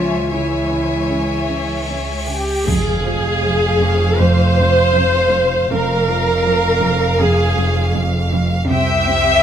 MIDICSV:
0, 0, Header, 1, 12, 480
1, 0, Start_track
1, 0, Key_signature, -4, "minor"
1, 0, Tempo, 780234
1, 1648, Time_signature, 4, 2, 24, 8
1, 2119, Tempo, 750939
1, 5944, End_track
2, 0, Start_track
2, 0, Title_t, "Violin section"
2, 0, Program_c, 0, 48
2, 5479, Note_on_c, 0, 84, 42
2, 5480, Note_on_c, 0, 91, 41
2, 5944, Note_off_c, 0, 84, 0
2, 5944, Note_off_c, 0, 91, 0
2, 5944, End_track
3, 0, Start_track
3, 0, Title_t, "Violin section"
3, 0, Program_c, 1, 48
3, 0, Note_on_c, 1, 80, 41
3, 175, Note_off_c, 1, 80, 0
3, 199, Note_on_c, 1, 80, 34
3, 1498, Note_off_c, 1, 80, 0
3, 1652, Note_on_c, 1, 77, 52
3, 3547, Note_off_c, 1, 77, 0
3, 3571, Note_on_c, 1, 77, 57
3, 5455, Note_off_c, 1, 77, 0
3, 5483, Note_on_c, 1, 79, 61
3, 5944, Note_off_c, 1, 79, 0
3, 5944, End_track
4, 0, Start_track
4, 0, Title_t, "Violin section"
4, 0, Program_c, 2, 48
4, 0, Note_on_c, 2, 73, 41
4, 0, Note_on_c, 2, 76, 44
4, 176, Note_off_c, 2, 73, 0
4, 176, Note_off_c, 2, 76, 0
4, 193, Note_on_c, 2, 76, 37
4, 194, Note_on_c, 2, 73, 36
4, 1382, Note_off_c, 2, 76, 0
4, 1383, Note_off_c, 2, 73, 0
4, 1407, Note_on_c, 2, 67, 36
4, 1630, Note_off_c, 2, 67, 0
4, 1650, Note_on_c, 2, 68, 62
4, 2585, Note_off_c, 2, 68, 0
4, 2601, Note_on_c, 2, 72, 67
4, 3569, Note_off_c, 2, 72, 0
4, 3571, Note_on_c, 2, 70, 62
4, 4520, Note_on_c, 2, 68, 52
4, 4521, Note_off_c, 2, 70, 0
4, 5000, Note_off_c, 2, 68, 0
4, 5482, Note_on_c, 2, 76, 75
4, 5944, Note_off_c, 2, 76, 0
4, 5944, End_track
5, 0, Start_track
5, 0, Title_t, "Viola section"
5, 0, Program_c, 3, 48
5, 0, Note_on_c, 3, 56, 25
5, 1407, Note_on_c, 3, 67, 45
5, 1410, Note_off_c, 3, 56, 0
5, 1630, Note_off_c, 3, 67, 0
5, 1647, Note_on_c, 3, 68, 67
5, 2599, Note_on_c, 3, 72, 74
5, 2603, Note_off_c, 3, 68, 0
5, 3568, Note_off_c, 3, 72, 0
5, 3574, Note_on_c, 3, 70, 72
5, 4504, Note_off_c, 3, 70, 0
5, 4523, Note_on_c, 3, 68, 65
5, 5002, Note_off_c, 3, 68, 0
5, 5482, Note_on_c, 3, 76, 85
5, 5944, Note_off_c, 3, 76, 0
5, 5944, End_track
6, 0, Start_track
6, 0, Title_t, "Clarinet"
6, 0, Program_c, 4, 71
6, 0, Note_on_c, 4, 65, 45
6, 199, Note_on_c, 4, 64, 35
6, 209, Note_off_c, 4, 65, 0
6, 1168, Note_off_c, 4, 64, 0
6, 5944, End_track
7, 0, Start_track
7, 0, Title_t, "Cello section"
7, 0, Program_c, 5, 48
7, 0, Note_on_c, 5, 49, 29
7, 100, Note_off_c, 5, 49, 0
7, 193, Note_on_c, 5, 49, 26
7, 340, Note_off_c, 5, 49, 0
7, 434, Note_on_c, 5, 49, 27
7, 582, Note_off_c, 5, 49, 0
7, 679, Note_on_c, 5, 49, 35
7, 826, Note_off_c, 5, 49, 0
7, 925, Note_on_c, 5, 49, 24
7, 1070, Note_off_c, 5, 49, 0
7, 1164, Note_on_c, 5, 61, 27
7, 1310, Note_off_c, 5, 61, 0
7, 1405, Note_on_c, 5, 49, 25
7, 1550, Note_off_c, 5, 49, 0
7, 1645, Note_on_c, 5, 41, 56
7, 1787, Note_off_c, 5, 41, 0
7, 1881, Note_on_c, 5, 53, 43
7, 2023, Note_off_c, 5, 53, 0
7, 2115, Note_on_c, 5, 53, 42
7, 2262, Note_off_c, 5, 53, 0
7, 2358, Note_on_c, 5, 41, 43
7, 2504, Note_off_c, 5, 41, 0
7, 2599, Note_on_c, 5, 41, 57
7, 2746, Note_off_c, 5, 41, 0
7, 2844, Note_on_c, 5, 41, 40
7, 2990, Note_off_c, 5, 41, 0
7, 3087, Note_on_c, 5, 41, 44
7, 3233, Note_off_c, 5, 41, 0
7, 3329, Note_on_c, 5, 41, 43
7, 3473, Note_off_c, 5, 41, 0
7, 3567, Note_on_c, 5, 41, 58
7, 3711, Note_off_c, 5, 41, 0
7, 3806, Note_on_c, 5, 53, 44
7, 3949, Note_off_c, 5, 53, 0
7, 4042, Note_on_c, 5, 53, 39
7, 4185, Note_off_c, 5, 53, 0
7, 4280, Note_on_c, 5, 41, 47
7, 4424, Note_off_c, 5, 41, 0
7, 4518, Note_on_c, 5, 41, 62
7, 4663, Note_off_c, 5, 41, 0
7, 4757, Note_on_c, 5, 41, 46
7, 4902, Note_off_c, 5, 41, 0
7, 4996, Note_on_c, 5, 41, 46
7, 5142, Note_off_c, 5, 41, 0
7, 5239, Note_on_c, 5, 41, 46
7, 5383, Note_off_c, 5, 41, 0
7, 5480, Note_on_c, 5, 48, 64
7, 5623, Note_off_c, 5, 48, 0
7, 5719, Note_on_c, 5, 60, 45
7, 5863, Note_off_c, 5, 60, 0
7, 5944, End_track
8, 0, Start_track
8, 0, Title_t, "Cello section"
8, 0, Program_c, 6, 48
8, 0, Note_on_c, 6, 53, 37
8, 195, Note_on_c, 6, 52, 26
8, 199, Note_off_c, 6, 53, 0
8, 1147, Note_off_c, 6, 52, 0
8, 1648, Note_on_c, 6, 41, 50
8, 3545, Note_off_c, 6, 41, 0
8, 3568, Note_on_c, 6, 41, 50
8, 5454, Note_off_c, 6, 41, 0
8, 5481, Note_on_c, 6, 48, 57
8, 5944, Note_off_c, 6, 48, 0
8, 5944, End_track
9, 0, Start_track
9, 0, Title_t, "Synth drone"
9, 0, Program_c, 7, 95
9, 0, Note_on_c, 7, 37, 61
9, 1623, Note_off_c, 7, 37, 0
9, 1649, Note_on_c, 7, 41, 72
9, 3545, Note_off_c, 7, 41, 0
9, 3573, Note_on_c, 7, 41, 72
9, 5456, Note_off_c, 7, 41, 0
9, 5487, Note_on_c, 7, 36, 67
9, 5944, Note_off_c, 7, 36, 0
9, 5944, End_track
10, 0, Start_track
10, 0, Title_t, "Double bass section"
10, 0, Program_c, 8, 48
10, 0, Note_on_c, 8, 37, 34
10, 1498, Note_off_c, 8, 37, 0
10, 1648, Note_on_c, 8, 29, 53
10, 3545, Note_off_c, 8, 29, 0
10, 3575, Note_on_c, 8, 29, 51
10, 5457, Note_off_c, 8, 29, 0
10, 5483, Note_on_c, 8, 36, 60
10, 5944, Note_off_c, 8, 36, 0
10, 5944, End_track
11, 0, Start_track
11, 0, Title_t, "Cymbal swell"
11, 0, Program_c, 10, 119
11, 0, Note_on_c, 10, 60, 34
11, 1647, Note_off_c, 10, 60, 0
11, 5944, End_track
12, 0, Start_track
12, 0, Title_t, "Impact"
12, 0, Program_c, 11, 103
12, 1647, Note_on_c, 11, 60, 53
12, 3570, Note_off_c, 11, 60, 0
12, 5944, End_track
0, 0, End_of_file